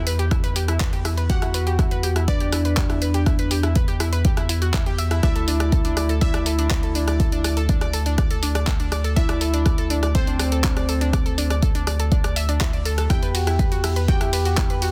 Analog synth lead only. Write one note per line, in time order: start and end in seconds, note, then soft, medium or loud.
1.30 2.18 F#4 loud
2.28 3.66 D4 loud
5.23 6.12 E4 loud
6.22 7.59 E4 loud
9.17 10.05 E4 loud
10.15 11.53 C4 loud
13.10 13.99 G4 loud
14.08 14.91 G4 loud